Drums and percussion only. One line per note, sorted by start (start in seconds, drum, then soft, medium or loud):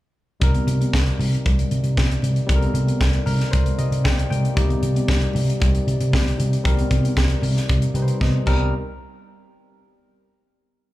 0.41 kick loud
0.41 closed hi-hat medium
0.41 muted conga soft
0.54 closed hi-hat soft
0.54 muted conga soft
0.54 high conga medium
0.68 closed hi-hat medium
0.81 closed hi-hat soft
0.81 high conga medium
0.93 kick loud
0.93 snare loud
1.06 closed hi-hat soft
1.06 muted conga soft
1.19 open hi-hat medium
1.19 low conga medium
1.35 closed hi-hat medium
1.46 kick loud
1.46 closed hi-hat medium
1.46 muted conga soft
1.46 low conga medium
1.59 closed hi-hat soft
1.71 closed hi-hat medium
1.84 closed hi-hat soft
1.97 kick loud
1.97 snare loud
1.97 high conga medium
2.09 closed hi-hat soft
2.09 muted conga soft
2.22 closed hi-hat medium
2.22 low conga medium
2.36 closed hi-hat soft
2.49 kick loud
2.49 closed hi-hat medium
2.62 closed hi-hat soft
2.62 high conga medium
2.75 closed hi-hat medium
2.87 closed hi-hat medium
2.87 high conga medium
3.01 kick loud
3.01 snare loud
3.13 closed hi-hat soft
3.13 muted conga soft
3.26 open hi-hat medium
3.26 low conga medium
3.40 snare soft
3.40 closed hi-hat medium
3.53 kick loud
3.53 closed hi-hat medium
3.53 low conga medium
3.66 closed hi-hat medium
3.66 muted conga soft
3.79 closed hi-hat medium
3.92 closed hi-hat medium
4.05 kick loud
4.05 snare loud
4.05 muted conga soft
4.05 high conga medium
4.17 closed hi-hat soft
4.17 muted conga soft
4.31 closed hi-hat medium
4.31 low conga medium
4.45 closed hi-hat soft
4.57 kick loud
4.57 closed hi-hat medium
4.57 muted conga soft
4.69 closed hi-hat soft
4.69 high conga medium
4.83 closed hi-hat medium
4.95 closed hi-hat medium
4.95 high conga medium
5.08 kick loud
5.08 snare loud
5.22 closed hi-hat soft
5.22 muted conga soft
5.33 open hi-hat medium
5.33 low conga medium
5.50 closed hi-hat medium
5.60 kick loud
5.60 closed hi-hat medium
5.60 muted conga soft
5.60 low conga medium
5.75 closed hi-hat medium
5.88 closed hi-hat medium
6.00 closed hi-hat medium
6.12 kick loud
6.12 snare loud
6.12 high conga medium
6.28 closed hi-hat soft
6.38 closed hi-hat medium
6.38 low conga medium
6.53 closed hi-hat soft
6.65 kick loud
6.65 closed hi-hat medium
6.77 closed hi-hat soft
6.77 muted conga soft
6.77 high conga medium
6.91 kick medium
6.91 closed hi-hat medium
7.03 closed hi-hat medium
7.03 high conga medium
7.17 kick loud
7.17 snare loud
7.30 closed hi-hat soft
7.42 open hi-hat medium
7.42 low conga medium
7.57 snare soft
7.57 closed hi-hat medium
7.69 kick loud
7.69 closed hi-hat medium
7.69 muted conga soft
7.69 low conga medium
7.82 closed hi-hat medium
7.95 closed hi-hat medium
8.08 closed hi-hat medium
8.21 kick medium
8.21 snare soft
8.21 muted conga soft
8.21 high conga medium
8.46 kick loud
8.46 crash medium
8.46 high conga medium